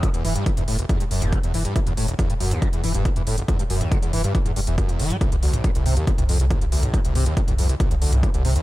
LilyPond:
<<
  \new Staff \with { instrumentName = "Acid bass" } { \clef bass \time 4/4 \key e \minor \tempo 4 = 139 e16 e,16 e16 g,16 e16 e,16 a,16 e,,16 e,16 g,16 fis,16 dis,16 e16 e,16 e16 g,16 | e16 e,16 a,16 e,,16 e,16 g,16 fis,16 dis,16 e16 e,16 e16 g,16 e16 e,16 a,16 e,,16 | e,16 g,16 fis,16 dis,16 e16 e,16 e16 g,16 e16 e,16 g,16 e,16 fis,16 e,16 e16 g16 | c,16 ees,16 d,16 ais,,16 c16 c,16 c16 ees,16 c16 c,16 f,16 c,16 c,16 ees,16 d,16 ais,,16 |
c16 c,16 c16 ees,16 c16 c,16 f,16 c,16 c,16 ees,16 d,16 ais,,16 c16 c,16 c16 ees,16 | }
  \new Staff \with { instrumentName = "Sub bass" } { \clef bass \time 4/4 \key e \minor r16 e,,16 e,,16 r8 e,,16 e,,16 r8 e,,16 e,,16 e,,16 r16 e,,16 e,,16 r16 | r16 e,,16 e,,16 r8 e,,16 e,,16 r8 e,,16 e,,16 e,,16 r16 e,,16 e,,16 r16 | r16 e,,16 e,,16 r8 e,,16 e,,16 r8 e,,16 e,,16 e,,16 r16 e,,16 e,,16 r16 | r16 c,16 c,16 r8 c,16 c,16 r8 c,16 c,16 c,16 r16 c,16 c,16 r16 |
r16 c,16 c,16 r8 c,16 c,16 r8 c,16 c,16 c,16 r16 c,16 c,16 r16 | }
  \new DrumStaff \with { instrumentName = "Drums" } \drummode { \time 4/4 <hh bd>16 hh16 <hho toml>16 hh16 <hh bd>16 <hh toml>16 hho16 hh16 <hh bd toml>16 hh16 hho16 <hh toml>16 <hh bd>16 hh16 <hho toml>16 hh16 | <hh bd>16 <hh toml>16 hho16 hh16 <hh bd toml>16 hh16 hho16 <hh toml>16 <hh bd>16 hh16 <hho toml>16 hh16 <hh bd>16 <hh toml>16 hho16 hh16 | <hh bd toml>16 hh16 hho16 <hh toml>16 <hh bd>16 hh16 <hho toml>16 hh16 <hh bd>16 <hh toml>16 hho16 hh16 <hh bd toml>16 hh16 hho16 <hh toml>16 | <hh bd toml>16 hh16 hho16 <hh toml>16 <hh bd>16 hh16 <hho toml>16 hh16 <hh bd>16 <hh toml>16 hho16 hh16 <hh bd toml>16 hh16 hho16 <hh toml>16 |
<hh bd>16 hh16 <hho toml>16 hh16 <hh bd>16 <hh toml>16 hho16 hh16 <hh bd toml>16 hh16 hho16 <hh toml>16 <hh bd>16 hh16 <hho toml>16 hh16 | }
>>